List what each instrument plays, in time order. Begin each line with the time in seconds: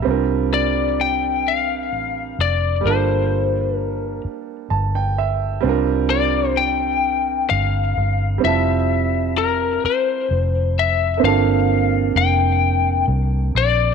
0.02 grand piano G3 C4
0.07 fingered electric bass C2, grand piano D4 F4
0.11 grand piano A#4
0.54 lead electric guitar D5
1.01 lead electric guitar G5
1.48 lead electric guitar F5
1.92 fingered electric bass A1
2.39 fingered electric bass F1, lead electric guitar D5
2.81 grand piano G3 A#3
2.85 fingered electric bass G1, grand piano D4 F4, lead electric guitar C5
2.90 grand piano A4
3.77 lead electric guitar A#4
4.25 muted fingered electric bass stroke
4.70 fingered electric bass G1, grand piano A5
4.95 grand piano G5
5.18 grand piano E5
5.61 fingered electric bass C2, grand piano G3 C4 D4
5.67 grand piano F4 A#4
6.10 lead electric guitar D5
6.57 lead electric guitar G5
7.50 fingered electric bass G1, lead electric guitar F5
7.97 fingered electric bass G1
8.38 grand piano G3 C4
8.43 fingered electric bass F1, grand piano E4 F4, lead electric guitar E5
8.47 grand piano A5
9.38 lead electric guitar A#4
9.84 lead electric guitar C5, muted fingered electric bass stroke
10.31 fingered electric bass F1
10.79 lead electric guitar E5
11.18 grand piano A#3 C4
11.22 fingered electric bass G1, grand piano D4 F4, lead electric guitar F5
11.26 grand piano A4
12.15 fingered electric bass F1, lead electric guitar G5
13.08 fingered electric bass C2
13.55 fingered electric bass A#1, lead electric guitar D5